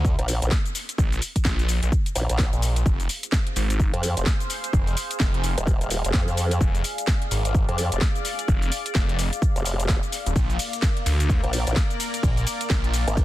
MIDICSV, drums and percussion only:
0, 0, Header, 1, 2, 480
1, 0, Start_track
1, 0, Tempo, 468750
1, 1007, Time_signature, 4, 2, 24, 8
1, 13563, End_track
2, 0, Start_track
2, 0, Title_t, "Drums"
2, 47, Note_on_c, 9, 36, 119
2, 53, Note_on_c, 9, 69, 46
2, 149, Note_off_c, 9, 36, 0
2, 155, Note_off_c, 9, 69, 0
2, 192, Note_on_c, 9, 42, 56
2, 289, Note_on_c, 9, 46, 107
2, 293, Note_on_c, 9, 69, 84
2, 294, Note_off_c, 9, 42, 0
2, 391, Note_off_c, 9, 46, 0
2, 395, Note_off_c, 9, 69, 0
2, 432, Note_on_c, 9, 42, 71
2, 436, Note_on_c, 9, 69, 37
2, 525, Note_on_c, 9, 38, 114
2, 527, Note_on_c, 9, 36, 116
2, 532, Note_off_c, 9, 69, 0
2, 532, Note_on_c, 9, 69, 46
2, 534, Note_off_c, 9, 42, 0
2, 627, Note_off_c, 9, 38, 0
2, 629, Note_off_c, 9, 36, 0
2, 634, Note_off_c, 9, 69, 0
2, 671, Note_on_c, 9, 42, 40
2, 675, Note_on_c, 9, 69, 34
2, 768, Note_on_c, 9, 46, 89
2, 772, Note_off_c, 9, 69, 0
2, 772, Note_on_c, 9, 69, 85
2, 773, Note_off_c, 9, 42, 0
2, 870, Note_off_c, 9, 46, 0
2, 874, Note_off_c, 9, 69, 0
2, 911, Note_on_c, 9, 42, 65
2, 915, Note_on_c, 9, 69, 35
2, 1007, Note_on_c, 9, 36, 123
2, 1012, Note_off_c, 9, 69, 0
2, 1012, Note_on_c, 9, 69, 49
2, 1013, Note_off_c, 9, 42, 0
2, 1110, Note_off_c, 9, 36, 0
2, 1114, Note_off_c, 9, 69, 0
2, 1151, Note_on_c, 9, 42, 39
2, 1155, Note_on_c, 9, 69, 33
2, 1247, Note_on_c, 9, 46, 107
2, 1251, Note_off_c, 9, 69, 0
2, 1251, Note_on_c, 9, 69, 83
2, 1253, Note_off_c, 9, 42, 0
2, 1350, Note_off_c, 9, 46, 0
2, 1354, Note_off_c, 9, 69, 0
2, 1390, Note_on_c, 9, 36, 60
2, 1390, Note_on_c, 9, 42, 72
2, 1394, Note_on_c, 9, 69, 36
2, 1484, Note_on_c, 9, 38, 124
2, 1487, Note_off_c, 9, 36, 0
2, 1487, Note_on_c, 9, 36, 118
2, 1491, Note_off_c, 9, 69, 0
2, 1491, Note_on_c, 9, 69, 48
2, 1493, Note_off_c, 9, 42, 0
2, 1586, Note_off_c, 9, 38, 0
2, 1589, Note_off_c, 9, 36, 0
2, 1593, Note_off_c, 9, 69, 0
2, 1630, Note_on_c, 9, 42, 58
2, 1634, Note_on_c, 9, 69, 32
2, 1727, Note_on_c, 9, 46, 93
2, 1731, Note_off_c, 9, 69, 0
2, 1731, Note_on_c, 9, 69, 83
2, 1732, Note_off_c, 9, 42, 0
2, 1829, Note_off_c, 9, 46, 0
2, 1833, Note_off_c, 9, 69, 0
2, 1870, Note_on_c, 9, 42, 70
2, 1874, Note_on_c, 9, 69, 37
2, 1967, Note_on_c, 9, 36, 120
2, 1971, Note_off_c, 9, 69, 0
2, 1971, Note_on_c, 9, 69, 44
2, 1972, Note_off_c, 9, 42, 0
2, 2069, Note_off_c, 9, 36, 0
2, 2073, Note_off_c, 9, 69, 0
2, 2111, Note_on_c, 9, 42, 55
2, 2115, Note_on_c, 9, 69, 34
2, 2207, Note_on_c, 9, 46, 101
2, 2211, Note_off_c, 9, 69, 0
2, 2211, Note_on_c, 9, 69, 81
2, 2213, Note_off_c, 9, 42, 0
2, 2309, Note_off_c, 9, 46, 0
2, 2313, Note_off_c, 9, 69, 0
2, 2350, Note_on_c, 9, 42, 71
2, 2354, Note_on_c, 9, 69, 35
2, 2444, Note_on_c, 9, 38, 117
2, 2447, Note_on_c, 9, 36, 110
2, 2451, Note_off_c, 9, 69, 0
2, 2451, Note_on_c, 9, 69, 43
2, 2452, Note_off_c, 9, 42, 0
2, 2546, Note_off_c, 9, 38, 0
2, 2549, Note_off_c, 9, 36, 0
2, 2553, Note_off_c, 9, 69, 0
2, 2590, Note_on_c, 9, 42, 39
2, 2594, Note_on_c, 9, 69, 33
2, 2687, Note_on_c, 9, 46, 96
2, 2691, Note_off_c, 9, 69, 0
2, 2691, Note_on_c, 9, 69, 85
2, 2693, Note_off_c, 9, 42, 0
2, 2789, Note_off_c, 9, 46, 0
2, 2793, Note_off_c, 9, 69, 0
2, 2830, Note_on_c, 9, 42, 68
2, 2834, Note_on_c, 9, 69, 35
2, 2926, Note_on_c, 9, 36, 127
2, 2930, Note_off_c, 9, 69, 0
2, 2930, Note_on_c, 9, 69, 45
2, 2932, Note_off_c, 9, 42, 0
2, 3029, Note_off_c, 9, 36, 0
2, 3033, Note_off_c, 9, 69, 0
2, 3069, Note_on_c, 9, 42, 39
2, 3073, Note_on_c, 9, 69, 32
2, 3167, Note_on_c, 9, 46, 109
2, 3171, Note_off_c, 9, 69, 0
2, 3171, Note_on_c, 9, 69, 77
2, 3172, Note_off_c, 9, 42, 0
2, 3269, Note_off_c, 9, 46, 0
2, 3273, Note_off_c, 9, 69, 0
2, 3309, Note_on_c, 9, 42, 69
2, 3313, Note_on_c, 9, 69, 35
2, 3403, Note_on_c, 9, 38, 127
2, 3406, Note_on_c, 9, 36, 123
2, 3410, Note_off_c, 9, 69, 0
2, 3410, Note_on_c, 9, 69, 46
2, 3412, Note_off_c, 9, 42, 0
2, 3505, Note_off_c, 9, 38, 0
2, 3509, Note_off_c, 9, 36, 0
2, 3512, Note_off_c, 9, 69, 0
2, 3549, Note_on_c, 9, 42, 55
2, 3646, Note_on_c, 9, 46, 93
2, 3650, Note_on_c, 9, 69, 84
2, 3652, Note_off_c, 9, 42, 0
2, 3749, Note_off_c, 9, 46, 0
2, 3753, Note_off_c, 9, 69, 0
2, 3790, Note_on_c, 9, 42, 72
2, 3794, Note_on_c, 9, 69, 36
2, 3886, Note_on_c, 9, 36, 121
2, 3891, Note_off_c, 9, 69, 0
2, 3891, Note_on_c, 9, 69, 43
2, 3892, Note_off_c, 9, 42, 0
2, 3989, Note_off_c, 9, 36, 0
2, 3994, Note_off_c, 9, 69, 0
2, 4030, Note_on_c, 9, 42, 58
2, 4128, Note_on_c, 9, 46, 107
2, 4132, Note_on_c, 9, 69, 79
2, 4133, Note_off_c, 9, 42, 0
2, 4230, Note_off_c, 9, 46, 0
2, 4234, Note_off_c, 9, 69, 0
2, 4270, Note_on_c, 9, 42, 71
2, 4274, Note_on_c, 9, 69, 35
2, 4364, Note_on_c, 9, 38, 126
2, 4367, Note_on_c, 9, 36, 118
2, 4371, Note_off_c, 9, 69, 0
2, 4371, Note_on_c, 9, 69, 42
2, 4372, Note_off_c, 9, 42, 0
2, 4466, Note_off_c, 9, 38, 0
2, 4469, Note_off_c, 9, 36, 0
2, 4474, Note_off_c, 9, 69, 0
2, 4510, Note_on_c, 9, 42, 39
2, 4514, Note_on_c, 9, 69, 34
2, 4607, Note_on_c, 9, 46, 101
2, 4611, Note_off_c, 9, 69, 0
2, 4611, Note_on_c, 9, 69, 80
2, 4612, Note_off_c, 9, 42, 0
2, 4709, Note_off_c, 9, 46, 0
2, 4713, Note_off_c, 9, 69, 0
2, 4750, Note_on_c, 9, 42, 70
2, 4754, Note_on_c, 9, 69, 32
2, 4846, Note_on_c, 9, 36, 127
2, 4851, Note_off_c, 9, 69, 0
2, 4851, Note_on_c, 9, 69, 45
2, 4853, Note_off_c, 9, 42, 0
2, 4949, Note_off_c, 9, 36, 0
2, 4954, Note_off_c, 9, 69, 0
2, 4991, Note_on_c, 9, 42, 37
2, 4995, Note_on_c, 9, 69, 30
2, 5087, Note_on_c, 9, 46, 108
2, 5091, Note_off_c, 9, 69, 0
2, 5091, Note_on_c, 9, 69, 80
2, 5093, Note_off_c, 9, 42, 0
2, 5189, Note_off_c, 9, 46, 0
2, 5193, Note_off_c, 9, 69, 0
2, 5230, Note_on_c, 9, 42, 70
2, 5234, Note_on_c, 9, 69, 34
2, 5323, Note_on_c, 9, 38, 127
2, 5326, Note_on_c, 9, 36, 127
2, 5330, Note_off_c, 9, 69, 0
2, 5330, Note_on_c, 9, 69, 47
2, 5332, Note_off_c, 9, 42, 0
2, 5426, Note_off_c, 9, 38, 0
2, 5429, Note_off_c, 9, 36, 0
2, 5433, Note_off_c, 9, 69, 0
2, 5470, Note_on_c, 9, 42, 55
2, 5567, Note_on_c, 9, 46, 100
2, 5571, Note_on_c, 9, 69, 78
2, 5573, Note_off_c, 9, 42, 0
2, 5669, Note_off_c, 9, 46, 0
2, 5673, Note_off_c, 9, 69, 0
2, 5710, Note_on_c, 9, 42, 72
2, 5714, Note_on_c, 9, 69, 33
2, 5806, Note_on_c, 9, 36, 127
2, 5811, Note_off_c, 9, 69, 0
2, 5811, Note_on_c, 9, 69, 42
2, 5813, Note_off_c, 9, 42, 0
2, 5909, Note_off_c, 9, 36, 0
2, 5913, Note_off_c, 9, 69, 0
2, 5951, Note_on_c, 9, 42, 55
2, 5955, Note_on_c, 9, 69, 30
2, 6046, Note_on_c, 9, 46, 114
2, 6050, Note_off_c, 9, 69, 0
2, 6050, Note_on_c, 9, 69, 76
2, 6053, Note_off_c, 9, 42, 0
2, 6148, Note_off_c, 9, 46, 0
2, 6152, Note_off_c, 9, 69, 0
2, 6190, Note_on_c, 9, 42, 70
2, 6194, Note_on_c, 9, 69, 34
2, 6283, Note_on_c, 9, 38, 123
2, 6286, Note_on_c, 9, 36, 119
2, 6290, Note_off_c, 9, 69, 0
2, 6290, Note_on_c, 9, 69, 42
2, 6293, Note_off_c, 9, 42, 0
2, 6386, Note_off_c, 9, 38, 0
2, 6389, Note_off_c, 9, 36, 0
2, 6393, Note_off_c, 9, 69, 0
2, 6430, Note_on_c, 9, 42, 39
2, 6434, Note_on_c, 9, 69, 31
2, 6526, Note_on_c, 9, 46, 103
2, 6530, Note_off_c, 9, 69, 0
2, 6530, Note_on_c, 9, 69, 77
2, 6532, Note_off_c, 9, 42, 0
2, 6629, Note_off_c, 9, 46, 0
2, 6633, Note_off_c, 9, 69, 0
2, 6670, Note_on_c, 9, 42, 66
2, 6674, Note_on_c, 9, 69, 33
2, 6766, Note_on_c, 9, 36, 127
2, 6771, Note_off_c, 9, 69, 0
2, 6771, Note_on_c, 9, 69, 45
2, 6772, Note_off_c, 9, 42, 0
2, 6868, Note_off_c, 9, 36, 0
2, 6873, Note_off_c, 9, 69, 0
2, 6909, Note_on_c, 9, 42, 35
2, 6913, Note_on_c, 9, 69, 32
2, 7007, Note_on_c, 9, 46, 117
2, 7011, Note_off_c, 9, 69, 0
2, 7011, Note_on_c, 9, 69, 75
2, 7012, Note_off_c, 9, 42, 0
2, 7109, Note_off_c, 9, 46, 0
2, 7113, Note_off_c, 9, 69, 0
2, 7150, Note_on_c, 9, 42, 67
2, 7154, Note_on_c, 9, 69, 35
2, 7244, Note_on_c, 9, 38, 124
2, 7246, Note_on_c, 9, 36, 127
2, 7251, Note_off_c, 9, 69, 0
2, 7251, Note_on_c, 9, 69, 44
2, 7253, Note_off_c, 9, 42, 0
2, 7346, Note_off_c, 9, 38, 0
2, 7349, Note_off_c, 9, 36, 0
2, 7353, Note_off_c, 9, 69, 0
2, 7390, Note_on_c, 9, 42, 55
2, 7487, Note_on_c, 9, 46, 99
2, 7491, Note_on_c, 9, 69, 74
2, 7493, Note_off_c, 9, 42, 0
2, 7589, Note_off_c, 9, 46, 0
2, 7593, Note_off_c, 9, 69, 0
2, 7630, Note_on_c, 9, 42, 67
2, 7634, Note_on_c, 9, 69, 33
2, 7726, Note_on_c, 9, 36, 127
2, 7731, Note_off_c, 9, 69, 0
2, 7731, Note_on_c, 9, 69, 41
2, 7732, Note_off_c, 9, 42, 0
2, 7829, Note_off_c, 9, 36, 0
2, 7833, Note_off_c, 9, 69, 0
2, 7870, Note_on_c, 9, 42, 52
2, 7967, Note_on_c, 9, 46, 117
2, 7971, Note_on_c, 9, 69, 81
2, 7973, Note_off_c, 9, 42, 0
2, 8069, Note_off_c, 9, 46, 0
2, 8073, Note_off_c, 9, 69, 0
2, 8110, Note_on_c, 9, 42, 70
2, 8114, Note_on_c, 9, 69, 34
2, 8204, Note_on_c, 9, 38, 125
2, 8207, Note_on_c, 9, 36, 119
2, 8211, Note_off_c, 9, 69, 0
2, 8211, Note_on_c, 9, 69, 41
2, 8212, Note_off_c, 9, 42, 0
2, 8306, Note_off_c, 9, 38, 0
2, 8309, Note_off_c, 9, 36, 0
2, 8314, Note_off_c, 9, 69, 0
2, 8350, Note_on_c, 9, 42, 37
2, 8354, Note_on_c, 9, 69, 31
2, 8446, Note_on_c, 9, 46, 99
2, 8450, Note_off_c, 9, 69, 0
2, 8450, Note_on_c, 9, 69, 78
2, 8453, Note_off_c, 9, 42, 0
2, 8549, Note_off_c, 9, 46, 0
2, 8553, Note_off_c, 9, 69, 0
2, 8589, Note_on_c, 9, 42, 66
2, 8593, Note_on_c, 9, 69, 31
2, 8687, Note_on_c, 9, 36, 127
2, 8690, Note_off_c, 9, 69, 0
2, 8690, Note_on_c, 9, 69, 46
2, 8692, Note_off_c, 9, 42, 0
2, 8789, Note_off_c, 9, 36, 0
2, 8793, Note_off_c, 9, 69, 0
2, 8830, Note_on_c, 9, 42, 35
2, 8834, Note_on_c, 9, 69, 30
2, 8926, Note_on_c, 9, 46, 113
2, 8930, Note_off_c, 9, 69, 0
2, 8930, Note_on_c, 9, 69, 81
2, 8932, Note_off_c, 9, 42, 0
2, 9028, Note_off_c, 9, 46, 0
2, 9032, Note_off_c, 9, 69, 0
2, 9071, Note_on_c, 9, 42, 64
2, 9075, Note_on_c, 9, 69, 34
2, 9164, Note_on_c, 9, 38, 117
2, 9166, Note_on_c, 9, 36, 127
2, 9171, Note_off_c, 9, 69, 0
2, 9171, Note_on_c, 9, 69, 43
2, 9173, Note_off_c, 9, 42, 0
2, 9266, Note_off_c, 9, 38, 0
2, 9269, Note_off_c, 9, 36, 0
2, 9273, Note_off_c, 9, 69, 0
2, 9311, Note_on_c, 9, 42, 53
2, 9407, Note_on_c, 9, 46, 101
2, 9411, Note_on_c, 9, 69, 76
2, 9413, Note_off_c, 9, 42, 0
2, 9510, Note_off_c, 9, 46, 0
2, 9514, Note_off_c, 9, 69, 0
2, 9551, Note_on_c, 9, 42, 68
2, 9555, Note_on_c, 9, 69, 35
2, 9646, Note_on_c, 9, 36, 127
2, 9651, Note_off_c, 9, 69, 0
2, 9651, Note_on_c, 9, 69, 44
2, 9653, Note_off_c, 9, 42, 0
2, 9749, Note_off_c, 9, 36, 0
2, 9753, Note_off_c, 9, 69, 0
2, 9790, Note_on_c, 9, 42, 53
2, 9794, Note_on_c, 9, 69, 32
2, 9886, Note_on_c, 9, 46, 113
2, 9890, Note_off_c, 9, 69, 0
2, 9890, Note_on_c, 9, 69, 76
2, 9892, Note_off_c, 9, 42, 0
2, 9989, Note_off_c, 9, 46, 0
2, 9993, Note_off_c, 9, 69, 0
2, 10030, Note_on_c, 9, 42, 64
2, 10034, Note_on_c, 9, 69, 35
2, 10124, Note_on_c, 9, 38, 113
2, 10126, Note_on_c, 9, 36, 114
2, 10131, Note_off_c, 9, 69, 0
2, 10131, Note_on_c, 9, 69, 42
2, 10133, Note_off_c, 9, 42, 0
2, 10226, Note_off_c, 9, 38, 0
2, 10229, Note_off_c, 9, 36, 0
2, 10233, Note_off_c, 9, 69, 0
2, 10270, Note_on_c, 9, 42, 36
2, 10274, Note_on_c, 9, 69, 31
2, 10367, Note_on_c, 9, 46, 101
2, 10371, Note_off_c, 9, 69, 0
2, 10371, Note_on_c, 9, 69, 80
2, 10373, Note_off_c, 9, 42, 0
2, 10470, Note_off_c, 9, 46, 0
2, 10474, Note_off_c, 9, 69, 0
2, 10510, Note_on_c, 9, 42, 60
2, 10514, Note_on_c, 9, 69, 33
2, 10606, Note_on_c, 9, 36, 127
2, 10606, Note_on_c, 9, 51, 59
2, 10610, Note_off_c, 9, 69, 0
2, 10610, Note_on_c, 9, 69, 45
2, 10613, Note_off_c, 9, 42, 0
2, 10708, Note_off_c, 9, 36, 0
2, 10709, Note_off_c, 9, 51, 0
2, 10713, Note_off_c, 9, 69, 0
2, 10750, Note_on_c, 9, 42, 35
2, 10754, Note_on_c, 9, 69, 32
2, 10846, Note_on_c, 9, 46, 111
2, 10846, Note_on_c, 9, 51, 88
2, 10850, Note_off_c, 9, 69, 0
2, 10850, Note_on_c, 9, 69, 83
2, 10852, Note_off_c, 9, 42, 0
2, 10949, Note_off_c, 9, 46, 0
2, 10949, Note_off_c, 9, 51, 0
2, 10952, Note_off_c, 9, 69, 0
2, 10990, Note_on_c, 9, 42, 66
2, 10994, Note_on_c, 9, 69, 34
2, 11083, Note_on_c, 9, 38, 116
2, 11086, Note_on_c, 9, 36, 127
2, 11086, Note_on_c, 9, 51, 61
2, 11090, Note_off_c, 9, 69, 0
2, 11090, Note_on_c, 9, 69, 45
2, 11093, Note_off_c, 9, 42, 0
2, 11186, Note_off_c, 9, 38, 0
2, 11188, Note_off_c, 9, 36, 0
2, 11189, Note_off_c, 9, 51, 0
2, 11193, Note_off_c, 9, 69, 0
2, 11230, Note_on_c, 9, 42, 54
2, 11327, Note_on_c, 9, 46, 93
2, 11327, Note_on_c, 9, 51, 86
2, 11331, Note_on_c, 9, 69, 81
2, 11333, Note_off_c, 9, 42, 0
2, 11429, Note_off_c, 9, 46, 0
2, 11429, Note_off_c, 9, 51, 0
2, 11433, Note_off_c, 9, 69, 0
2, 11470, Note_on_c, 9, 42, 67
2, 11474, Note_on_c, 9, 69, 36
2, 11566, Note_on_c, 9, 36, 126
2, 11566, Note_on_c, 9, 51, 57
2, 11570, Note_off_c, 9, 69, 0
2, 11570, Note_on_c, 9, 69, 44
2, 11572, Note_off_c, 9, 42, 0
2, 11668, Note_off_c, 9, 36, 0
2, 11669, Note_off_c, 9, 51, 0
2, 11673, Note_off_c, 9, 69, 0
2, 11710, Note_on_c, 9, 42, 52
2, 11807, Note_on_c, 9, 46, 108
2, 11807, Note_on_c, 9, 51, 86
2, 11811, Note_on_c, 9, 69, 79
2, 11813, Note_off_c, 9, 42, 0
2, 11909, Note_off_c, 9, 46, 0
2, 11909, Note_off_c, 9, 51, 0
2, 11913, Note_off_c, 9, 69, 0
2, 11950, Note_on_c, 9, 42, 68
2, 11954, Note_on_c, 9, 69, 35
2, 12043, Note_on_c, 9, 38, 108
2, 12046, Note_on_c, 9, 36, 117
2, 12047, Note_on_c, 9, 51, 56
2, 12051, Note_off_c, 9, 69, 0
2, 12051, Note_on_c, 9, 69, 42
2, 12052, Note_off_c, 9, 42, 0
2, 12146, Note_off_c, 9, 38, 0
2, 12148, Note_off_c, 9, 36, 0
2, 12149, Note_off_c, 9, 51, 0
2, 12153, Note_off_c, 9, 69, 0
2, 12190, Note_on_c, 9, 42, 37
2, 12194, Note_on_c, 9, 69, 33
2, 12287, Note_on_c, 9, 46, 96
2, 12287, Note_on_c, 9, 51, 91
2, 12291, Note_off_c, 9, 69, 0
2, 12291, Note_on_c, 9, 69, 86
2, 12292, Note_off_c, 9, 42, 0
2, 12389, Note_off_c, 9, 46, 0
2, 12389, Note_off_c, 9, 51, 0
2, 12393, Note_off_c, 9, 69, 0
2, 12430, Note_on_c, 9, 42, 63
2, 12434, Note_on_c, 9, 69, 35
2, 12526, Note_on_c, 9, 36, 117
2, 12526, Note_on_c, 9, 51, 62
2, 12530, Note_off_c, 9, 69, 0
2, 12530, Note_on_c, 9, 69, 47
2, 12533, Note_off_c, 9, 42, 0
2, 12628, Note_off_c, 9, 36, 0
2, 12628, Note_off_c, 9, 51, 0
2, 12632, Note_off_c, 9, 69, 0
2, 12670, Note_on_c, 9, 42, 38
2, 12674, Note_on_c, 9, 69, 33
2, 12766, Note_on_c, 9, 46, 103
2, 12766, Note_on_c, 9, 51, 85
2, 12770, Note_off_c, 9, 69, 0
2, 12770, Note_on_c, 9, 69, 86
2, 12772, Note_off_c, 9, 42, 0
2, 12869, Note_off_c, 9, 46, 0
2, 12869, Note_off_c, 9, 51, 0
2, 12872, Note_off_c, 9, 69, 0
2, 12910, Note_on_c, 9, 42, 69
2, 12914, Note_on_c, 9, 69, 38
2, 13004, Note_on_c, 9, 38, 114
2, 13006, Note_on_c, 9, 36, 116
2, 13007, Note_on_c, 9, 51, 58
2, 13011, Note_off_c, 9, 69, 0
2, 13011, Note_on_c, 9, 69, 47
2, 13012, Note_off_c, 9, 42, 0
2, 13106, Note_off_c, 9, 38, 0
2, 13108, Note_off_c, 9, 36, 0
2, 13109, Note_off_c, 9, 51, 0
2, 13113, Note_off_c, 9, 69, 0
2, 13150, Note_on_c, 9, 42, 54
2, 13246, Note_on_c, 9, 46, 92
2, 13246, Note_on_c, 9, 51, 86
2, 13250, Note_on_c, 9, 69, 84
2, 13253, Note_off_c, 9, 42, 0
2, 13348, Note_off_c, 9, 46, 0
2, 13348, Note_off_c, 9, 51, 0
2, 13352, Note_off_c, 9, 69, 0
2, 13390, Note_on_c, 9, 42, 67
2, 13394, Note_on_c, 9, 69, 39
2, 13486, Note_on_c, 9, 36, 124
2, 13487, Note_on_c, 9, 51, 57
2, 13491, Note_off_c, 9, 69, 0
2, 13491, Note_on_c, 9, 69, 43
2, 13492, Note_off_c, 9, 42, 0
2, 13563, Note_off_c, 9, 36, 0
2, 13563, Note_off_c, 9, 51, 0
2, 13563, Note_off_c, 9, 69, 0
2, 13563, End_track
0, 0, End_of_file